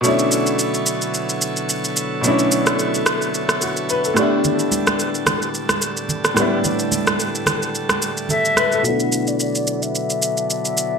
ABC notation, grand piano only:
X:1
M:4/4
L:1/16
Q:"Swing 16ths" 1/4=109
K:Bm
V:1 name="Grand piano"
z16 | z8 z2 F2 B A2 z | z16 | z12 A2 B A- |
A z12 z3 |]
V:2 name="Grand piano"
[B,,F,A,CDE]16 | [B,,F,A,CDE]12- [B,,F,A,CDE]2 [A,,G,B,DE]2- | [A,,G,B,DE]12- [A,,G,B,DE]2 [A,,G,B,DE]2- | [A,,G,B,DE]12- [A,,G,B,DE]2 z2 |
[B,,F,A,B,DE]16 |]